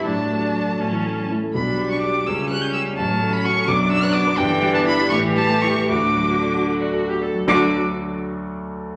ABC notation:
X:1
M:6/8
L:1/16
Q:3/8=81
K:D
V:1 name="Violin"
a8- a2 z2 | b3 c' d'2 e'2 f' g' e'2 | a3 b c'2 d'2 e' f' d'2 | g3 a b2 c'2 a2 c'2 |
d'6 z6 | d'2 z8 z2 |]
V:2 name="Viola"
D6 C4 z2 | D6 C6 | C6 D6 | D6 G6 |
F6 F3 G A2 | F2 z8 z2 |]
V:3 name="Grand piano"
A,, F, A, D F A A,, E, A, C E A | B,,, B,, G, D G D C,, C, G, C G C | A,,, A,, A, C F A B,,, F,, F, B, F B, | G,, D, G, B, E G A,, E, G, A, E G |
D,, A,, F, A, D F A d A F D F, | [D,,D,F,A,DA]2 z8 z2 |]
V:4 name="Cello" clef=bass
F,6 F,3 G, A,2 | G,6 G,6 | F,6 F,6 | E,6 E,6 |
D,8- D,2 z2 | D,2 z8 z2 |]